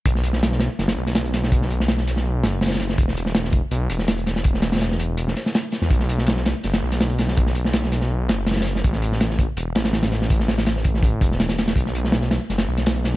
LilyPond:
<<
  \new Staff \with { instrumentName = "Detuned saw bass" } { \clef bass \time 4/4 \key e \dorian \tempo 4 = 164 b,,4.~ b,,16 r16 fis,,8 b,,4.~ | b,,2~ b,,8 fis,,4. | e,,4.~ e,,16 r16 b,,8 e,,4.~ | e,,2~ e,,8 r4 r16 e,16 |
b,,4.~ b,,16 r16 fis,,8 b,,4.~ | b,,2~ b,,8 fis,,4. | a,,4.~ a,,16 r16 e,,8 a,,4.~ | a,,2~ a,,8 e,,4 e,,8 |
b,,4.~ b,,16 r16 fis,,8 b,,4. | }
  \new DrumStaff \with { instrumentName = "Drums" } \drummode { \time 4/4 <hh bd>16 sn16 hh16 sn16 <hh sn>16 sn16 <hh sn>8 <hh sn>16 <hh sn>8 <hh sn>16 <hh sn>16 hh16 <hh sn>16 sn16 | <hh bd>16 sn16 hh16 sn16 <hh sn>16 sn16 <hh sn>16 sn16 r8 <hh sn>8 <hh sn>32 <hh sn>32 <hh sn>32 <hh sn>32 <hh sn>16 sn16 | <hh bd>16 sn16 hh16 sn16 <hh sn>16 sn16 <hh bd>8 hh8 hh16 sn16 <hh sn>16 hh16 <hh sn>16 sn16 | <hh bd>16 sn16 <hh sn>16 <hh sn>32 <hh sn>32 <hh sn>16 sn16 hh8 hh16 sn16 <hh sn>16 sn16 <hh sn>8 <hh sn>16 sn16 |
<hh bd>16 sn16 hh16 sn16 <hh sn>16 sn16 <hh sn>8 <hh sn>16 <hh sn>8 <hh sn>16 <hh sn>16 hh16 <hh sn>16 sn16 | <hh bd>16 sn16 hh16 sn16 <hh sn>16 sn16 <hh sn>16 sn16 r8 <hh sn>8 <hh sn>32 <hh sn>32 <hh sn>32 <hh sn>32 <hh sn>16 sn16 | <hh bd>16 sn16 hh16 sn16 <hh sn>16 sn16 <hh bd>8 hh8 <hh sn>16 <hh sn>16 <hh sn>16 <hh sn>16 <hh sn>16 sn16 | <hh bd>16 sn16 <hh sn>16 <hh sn>16 <hh sn>16 sn16 <hh bd>16 sn16 <hh bd>8 <hh bd>16 sn16 <hh sn>16 <hh sn>16 <hh sn>16 <hh sn>16 |
<hh bd>16 sn16 hh16 sn16 <hh sn>16 sn16 <hh sn>8 <hh sn>16 <hh sn>8 <hh sn>16 <hh sn>16 hh16 <hh sn>8 | }
>>